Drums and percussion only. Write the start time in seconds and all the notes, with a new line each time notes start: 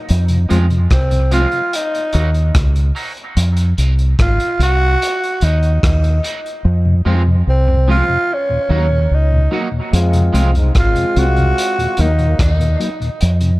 0.09 closed hi-hat
0.28 closed hi-hat
0.50 closed hi-hat
0.70 closed hi-hat
0.90 kick, cross-stick, closed hi-hat
1.11 closed hi-hat
1.31 closed hi-hat
1.52 closed hi-hat
1.73 closed hi-hat
1.95 closed hi-hat
2.13 closed hi-hat
2.34 closed hi-hat
2.55 kick, cross-stick, closed hi-hat
2.76 closed hi-hat
2.96 open hi-hat
3.17 closed hi-hat
3.37 closed hi-hat
3.57 closed hi-hat
3.78 closed hi-hat
3.99 closed hi-hat
4.19 kick, cross-stick, closed hi-hat
4.40 closed hi-hat
4.60 closed hi-hat
5.02 closed hi-hat
5.23 closed hi-hat
5.41 closed hi-hat
5.63 closed hi-hat
5.83 kick, cross-stick, closed hi-hat
6.04 closed hi-hat
6.24 closed hi-hat
6.46 closed hi-hat
9.93 closed hi-hat
10.13 closed hi-hat
10.35 closed hi-hat
10.55 closed hi-hat
10.75 kick, cross-stick, closed hi-hat
10.96 closed hi-hat
11.16 closed hi-hat
11.36 closed hi-hat
11.58 closed hi-hat
11.79 closed hi-hat
11.97 closed hi-hat
12.19 closed hi-hat
12.39 kick, cross-stick, closed hi-hat
12.61 closed hi-hat
12.81 closed hi-hat
13.02 closed hi-hat
13.21 closed hi-hat
13.41 closed hi-hat